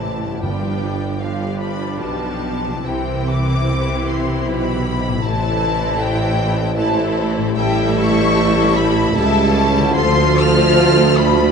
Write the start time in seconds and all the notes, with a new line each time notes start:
Already playing: A1 A2 C3 E3 G3 E4 G4 C5 A5
0.25 G2
0.30 B3
0.34 F4
0.39 G1 D5
0.43 G2 F3 D4 G4 B4 G5
1.20 F3 D4 G4 B4 F5
1.60 B5
2.00 B1 B2 A5
2.67 C3
2.72 C4
2.76 E4
2.81 C2 E5 G5
2.85 C2 C3 E3 E4 G4 C5
3.29 D6
4.08 C6
4.47 B1 B2 B5
5.07 A2
5.11 C4
5.16 E4
5.20 A1 E5 A5
5.24 A2 E3 E4 A4 C5
6.00 G5
6.76 E3 E4 A4 C5 A5
7.38 A2
7.42 A3
7.47 G4
7.51 E5
7.56 A1 A2 G3 E4 A4 E5 G5
7.98 C#6
8.76 B5
9.15 C#2 G3 E4 A4 E5 A5
9.53 C#5
9.78 D3
9.82 A3
9.87 F4
9.91 A4 C5
9.95 D2 F3 F4 C5 C6
10.40 F6
11.18 B5